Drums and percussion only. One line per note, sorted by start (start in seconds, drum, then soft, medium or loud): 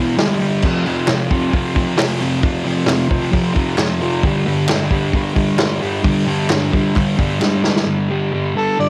0.19 snare loud
0.19 open hi-hat loud
0.41 open hi-hat medium
0.63 kick loud
0.63 crash loud
0.86 open hi-hat medium
1.08 snare loud
1.08 clap loud
1.08 open hi-hat medium
1.30 kick medium
1.30 open hi-hat medium
1.53 kick medium
1.53 open hi-hat medium
1.76 kick loud
1.76 open hi-hat medium
1.98 snare loud
1.98 clap loud
1.98 open hi-hat loud
2.21 open hi-hat medium
2.43 kick loud
2.43 open hi-hat medium
2.67 open hi-hat medium
2.87 snare loud
2.87 clap loud
2.87 open hi-hat loud
3.10 kick medium
3.10 open hi-hat medium
3.33 kick loud
3.33 open hi-hat medium
3.56 kick medium
3.56 open hi-hat medium
3.78 snare loud
3.78 clap medium
3.78 open hi-hat medium
4.01 open hi-hat medium
4.23 kick loud
4.23 open hi-hat medium
4.48 open hi-hat medium
4.68 snare loud
4.68 clap loud
4.68 open hi-hat medium
4.91 kick medium
4.91 open hi-hat medium
5.13 kick medium
5.13 open hi-hat medium
5.36 kick medium
5.36 open hi-hat medium
5.58 snare loud
5.58 clap medium
5.58 open hi-hat medium
5.82 open hi-hat medium
6.04 kick loud
6.04 open hi-hat medium
6.28 open hi-hat medium
6.50 snare loud
6.50 clap medium
6.50 open hi-hat medium
6.73 kick medium
6.73 open hi-hat medium
6.96 kick medium
6.96 clap medium
6.96 open hi-hat medium
7.19 kick medium
7.19 open hi-hat medium
7.42 snare medium
7.42 clap medium
7.64 snare medium
7.76 snare loud